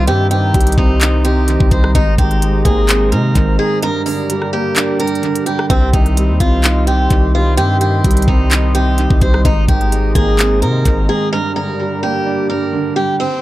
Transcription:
Already playing: grand piano C3 D#3 G3 C4 D#4, analog synth pad G4 C5 D#5
0.07 808-style bass G2, grand piano C3, steel-string acoustic guitar G4, analog synth pad A#5, closed hi-hat
0.31 grand piano D#3, steel-string acoustic guitar G4, closed hi-hat
0.54 808-style bass C2, grand piano G3, kick, closed hi-hat
0.61 closed hi-hat
0.67 closed hi-hat
0.72 closed hi-hat
0.78 808-style bass C2, grand piano C4, steel-string acoustic guitar D#4, kick
1.01 grand piano D#4, clap, closed hi-hat
1.25 grand piano C3, steel-string acoustic guitar G4, closed hi-hat
1.48 grand piano D#3, closed hi-hat
1.60 808-style bass C2, kick
1.71 808-style bass C2, grand piano G3, steel-string acoustic guitar C5, kick, closed hi-hat
1.84 cross-stick
1.95 808-style bass G#1, grand piano G#2, analog synth pad G#3, steel-string acoustic guitar D#4, kick, closed hi-hat
2.18 808-style bass G#1, grand piano D#3, steel-string acoustic guitar G4, kick, closed hi-hat
2.31 closed hi-hat
2.42 grand piano G#3, closed hi-hat
2.65 808-style bass G#1, grand piano A#3, steel-string acoustic guitar G#4, kick, closed hi-hat
2.89 grand piano C4, clap, closed hi-hat
3.12 grand piano G#2, 808-style bass C3, steel-string acoustic guitar A#4, closed hi-hat
3.34 808-style bass G#1, grand piano D#3, kick, closed hi-hat
3.59 grand piano G#3, steel-string acoustic guitar G#4
3.82 grand piano G2, analog synth pad G4 A#4 D5, steel-string acoustic guitar A#4, closed hi-hat
4.06 grand piano D3, steel-string acoustic guitar A#4, open hi-hat
4.29 grand piano G3, closed hi-hat
4.42 cross-stick
4.53 grand piano A#3, steel-string acoustic guitar G4
4.76 grand piano D4, clap, closed hi-hat
5.00 grand piano G2, steel-string acoustic guitar A#4, closed hi-hat
5.07 closed hi-hat
5.15 closed hi-hat
5.23 grand piano D3, closed hi-hat
5.35 closed hi-hat
5.46 grand piano G3, steel-string acoustic guitar G4, closed hi-hat
5.59 cross-stick
5.69 808-style bass C2, grand piano C3, steel-string acoustic guitar C4, analog synth pad G4 C5 D#5 C6, kick, closed hi-hat
5.93 808-style bass C2, grand piano D#3, steel-string acoustic guitar D#4, kick, closed hi-hat
6.06 closed hi-hat
6.17 grand piano G3, closed hi-hat
6.29 808-style bass D#2
6.40 808-style bass C2, grand piano C4, steel-string acoustic guitar F4, kick, closed hi-hat
6.64 grand piano D#4, clap, closed hi-hat
6.87 grand piano C3, steel-string acoustic guitar G4, closed hi-hat
7.10 808-style bass C2, grand piano D#3, kick, closed hi-hat
7.35 grand piano G3, steel-string acoustic guitar F4
7.57 808-style bass G2, grand piano C3, steel-string acoustic guitar G4, closed hi-hat
7.81 grand piano D#3, steel-string acoustic guitar G4, closed hi-hat
8.04 808-style bass C2, grand piano G3, kick, closed hi-hat
8.11 closed hi-hat
8.17 closed hi-hat
8.22 closed hi-hat
8.28 808-style bass C2, grand piano C4, steel-string acoustic guitar D#4, kick
8.51 grand piano D#4, clap, closed hi-hat
8.75 grand piano C3, steel-string acoustic guitar G4, closed hi-hat
8.98 grand piano D#3, closed hi-hat
9.10 808-style bass C2, kick
9.21 808-style bass C2, grand piano G3, steel-string acoustic guitar C5, kick, closed hi-hat
9.34 cross-stick
9.45 808-style bass G#1, grand piano G#2, analog synth pad G#3 A#5, steel-string acoustic guitar D#4, kick, closed hi-hat
9.68 808-style bass G#1, grand piano D#3, steel-string acoustic guitar G4, kick, closed hi-hat
9.81 closed hi-hat
9.91 grand piano G#3, closed hi-hat
10.15 808-style bass G#1, grand piano A#3, steel-string acoustic guitar G#4, kick, closed hi-hat
10.39 grand piano C4, clap, closed hi-hat
10.62 grand piano G#2, 808-style bass C3, steel-string acoustic guitar A#4, closed hi-hat
10.85 808-style bass G#1, grand piano D#3, kick, closed hi-hat
11.09 grand piano G#3, steel-string acoustic guitar G#4
11.32 grand piano G2, analog synth pad G4 A#4 D5, steel-string acoustic guitar A#4
11.56 grand piano D3, steel-string acoustic guitar A#4
11.80 grand piano G3
12.03 grand piano A#3, steel-string acoustic guitar G4
12.26 grand piano D4
12.50 grand piano G2, steel-string acoustic guitar A#4
12.73 grand piano D3
12.96 grand piano G3, steel-string acoustic guitar G4
13.20 analog synth pad C3 G3 D#4, steel-string acoustic guitar C4, downlifter

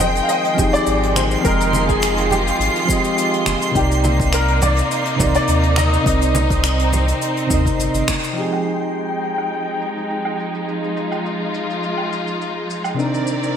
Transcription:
Already playing: sub bass F1, string section D#3 G#3 G5, synth keys F3 C4 G#4 D#5 G5, synth texture C6
0.00 low conga, shaker
0.15 closed hi-hat, shaker
0.22 grand piano F5
0.29 grand piano D#5, closed hi-hat, shaker
0.44 closed hi-hat
0.55 sub bass F1, synth keys F3 C4 G4, kick, low conga
0.59 synth keys D#4 G#4, shaker
0.73 grand piano D5, closed hi-hat, shaker
0.86 sub bass G#1, closed hi-hat, shaker
1.03 closed hi-hat
1.16 grand piano C5, finger snap, high conga, shaker
1.31 shaker
1.41 sub bass F1, synth keys F3 C4 G5, grand piano A#4, kick, closed hi-hat
1.45 synth keys G#3 D#5, string section F4, shaker
1.60 closed hi-hat, shaker
1.73 high conga, shaker
1.89 grand piano G#4, kick, shaker
2.02 finger snap, closed hi-hat, shaker
2.18 closed hi-hat
2.31 grand piano G4, low conga, shaker
2.47 closed hi-hat, shaker
2.60 sub bass G#1, closed hi-hat, shaker
2.76 closed hi-hat
2.85 synth keys F3 C4 G4, kick
2.90 synth keys G#3 D#5, shaker
3.04 closed hi-hat, shaker
3.18 closed hi-hat, shaker
3.34 closed hi-hat
3.46 sub bass F1, finger snap, high conga, shaker
3.62 shaker
3.72 sub bass C2, synth keys C3 C4 D#4, string section A#3 D#4, kick
3.76 grand piano G4, synth keys A#4 D5, closed hi-hat, shaker
3.91 closed hi-hat, shaker
4.04 high conga, shaker
4.20 kick, shaker
4.32 grand piano A#4, finger snap, closed hi-hat, shaker
4.48 closed hi-hat
4.62 grand piano D5, low conga, shaker
4.76 closed hi-hat, shaker
4.91 closed hi-hat, shaker
5.05 closed hi-hat
5.16 sub bass C2, synth keys C3 C4 D#4, kick, low conga, shaker
5.21 synth keys A#4 D5
5.34 grand piano D5, closed hi-hat, shaker
5.47 sub bass D#2, closed hi-hat, shaker
5.63 closed hi-hat
5.76 grand piano D#5, finger snap, high conga, shaker
5.94 shaker
6.02 sub bass C2, synth keys C3 C4 D#4, string section C4, kick
6.07 synth keys A#4 D#5, closed hi-hat, shaker
6.21 closed hi-hat, shaker
6.35 high conga, shaker
6.50 kick, closed hi-hat, shaker
6.64 finger snap, closed hi-hat, shaker
6.79 closed hi-hat
6.93 low conga, shaker
7.08 closed hi-hat, shaker
7.22 closed hi-hat, shaker
7.37 closed hi-hat
7.47 sub bass D#2, synth keys C3 C4 D#4, kick, shaker
7.52 synth keys A#4 D#5
7.66 kick, closed hi-hat, shaker
7.79 sub bass G1, closed hi-hat, shaker
7.94 sub bass G1, closed hi-hat, shaker
8.08 finger snap, kick, high conga, shaker
8.24 shaker
8.33 synth keys F3 C4 D#4, string section F3 G#3 D#4 G5, shaker
8.38 synth keys G4 G#4
8.53 low woodblock, shaker
8.65 shaker
8.82 shaker
8.95 shaker
9.25 shaker
9.38 low woodblock, shaker
9.53 shaker
9.82 shaker
9.98 shaker
10.10 shaker
10.25 low woodblock
10.39 shaker
10.55 shaker
10.67 string section F4, shaker
10.84 shaker
10.97 shaker
11.12 low woodblock, shaker
11.26 shaker
11.54 shaker
11.70 shaker
11.84 shaker
11.98 low woodblock
12.13 shaker
12.28 shaker
12.41 shaker
12.70 shaker
12.84 low woodblock, shaker
12.94 synth keys C3 C4 D4
12.99 string section D#3 C4 A#4 D5, synth keys D#4 A#4, shaker
13.14 shaker
13.27 shaker
13.43 shaker

